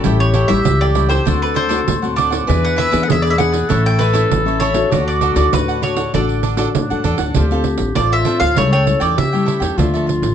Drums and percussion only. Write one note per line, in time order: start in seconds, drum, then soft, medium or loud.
0.04 pandeiro medium
0.21 pandeiro soft
0.34 pandeiro medium
0.48 pandeiro medium
0.65 pandeiro medium
0.81 pandeiro soft
0.95 pandeiro medium
1.11 pandeiro medium
1.27 pandeiro medium
1.43 pandeiro soft
1.56 pandeiro medium
1.70 pandeiro medium
1.88 pandeiro medium
2.04 pandeiro soft
2.18 pandeiro medium
2.32 pandeiro medium
2.50 pandeiro medium
2.66 pandeiro soft
2.79 pandeiro medium
2.93 pandeiro medium
3.10 pandeiro medium
3.27 pandeiro soft
3.40 pandeiro medium
3.54 pandeiro medium
3.70 pandeiro medium
3.86 pandeiro soft
4.00 pandeiro medium
4.15 pandeiro medium
4.31 pandeiro medium
4.48 pandeiro soft
4.61 pandeiro medium
4.74 pandeiro medium
4.92 pandeiro medium
5.09 pandeiro soft
5.21 pandeiro medium
5.36 pandeiro medium
5.53 pandeiro medium
5.69 pandeiro soft
5.83 pandeiro medium
5.97 pandeiro medium
6.14 pandeiro medium
6.29 pandeiro soft
6.43 pandeiro medium
6.57 pandeiro medium
6.75 pandeiro medium
6.91 pandeiro soft
7.04 pandeiro medium
7.18 pandeiro medium
7.34 pandeiro medium
7.51 pandeiro soft
7.64 pandeiro medium
7.78 pandeiro medium
7.95 pandeiro medium
8.12 pandeiro soft
8.25 pandeiro medium
8.40 pandeiro medium
8.56 pandeiro medium
8.73 pandeiro soft
8.87 pandeiro medium
9.01 pandeiro medium
9.18 pandeiro medium
9.35 pandeiro soft
9.48 pandeiro medium
9.62 pandeiro medium
9.79 pandeiro medium
9.95 pandeiro soft
10.09 pandeiro medium
10.23 pandeiro medium